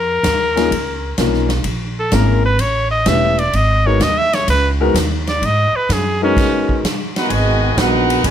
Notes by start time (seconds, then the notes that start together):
Already playing: F2 A#4
0.23 D#2, kick, snare, hi-hat pedal, ride
0.56 A#3 C#4 D#4 F4 G#4, snare, ride
0.71 C#2, kick, ride
1.18 B1 A#3 C#4 D#4 F4 A#4, kick, snare, hi-hat pedal, ride
1.34 snare
1.49 snare, ride
1.64 A#1, kick, ride
1.99 A4
2.12 G#1 A#3 C#4 E4 G#4 A#4, kick, snare, hi-hat pedal, ride
2.45 B4
2.59 A1 C#5, kick, ride
2.91 D#5
3.06 E1 A3 C#4 E4 G4 B4 E5, kick, snare, hi-hat pedal, ride
3.38 D5, ride
3.53 G#1 D#5, kick, ride
3.86 G#3 B3 D#4 F#4 A#4 C#5
4.00 D#2 D#5, kick, snare, hi-hat pedal, ride
4.18 E5
4.33 C#5, snare, ride
4.48 C#2 B4, kick, ride
4.81 G#3 B3 D#4 F#4 A#4
4.94 D#2, kick, snare, hi-hat pedal, ride
5.27 D5, snare, ride
5.42 G#2 D#5, kick, ride
5.72 muted upright bass stroke
5.76 B4
5.89 F#2 G#4, kick, snare, hi-hat pedal, ride
6.22 G#3 B3 C#4 D#4 F#4 A#4
6.37 kick, snare, crash, ride
6.69 kick
6.84 kick, snare, hi-hat pedal, ride
7.15 B3 D#4 F#4 A#4 B4 F#5, snare, ride
7.30 G#1 B2 D#3 G#3 F#4 B4 D#5 G#5, kick, ride
7.77 A#1 B3 D#4 F#4 A#4 B4 F#5, kick, snare, hi-hat pedal, ride
8.10 ride
8.24 B1 B2 D#3 G#3 F#4 B4 D#5 G#5, kick, ride